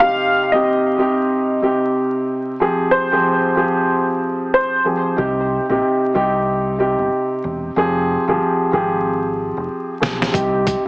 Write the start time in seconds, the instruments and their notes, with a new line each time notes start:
0.00 grand piano C3 C4 D#4 G4, upright piano F5
0.52 grand piano C3 C4 D#4 G4, upright piano D#5
0.98 grand piano C3 C4 D#4 G4
1.62 grand piano C3 C4 D#4 G4
2.60 grand piano F3 C4 G4 G#4
2.91 upright piano C5
3.11 grand piano F3 C4 G4 G#4
3.56 grand piano F3 C4 G4 G#4
4.54 upright piano C5
4.84 grand piano F3 C4 G4 G#4
5.17 fingered electric bass C2, grand piano C3 C4 D#4 G4
5.69 fingered electric bass A#1, grand piano C3 C4 D#4 G4
6.14 fingered electric bass C2, grand piano C3 C4 D#4 G4
6.78 grand piano C3 C4 D#4 G4
6.99 fingered electric bass G1
7.44 fingered electric bass E1
7.76 fingered electric bass F1, grand piano F3 C4 G4 G#4
8.28 fingered electric bass G1, grand piano F3 C4 G4 G#4
8.72 fingered electric bass G#1, grand piano F3 C4 G4 G#4
9.57 fingered electric bass F1
10.00 fingered electric bass B1, grand piano F3 C4 G4 G#4, snare
10.22 snare
10.33 fingered electric bass C2, grand piano C3 C4 D#4 G4, kick, closed hi-hat
10.67 kick, closed hi-hat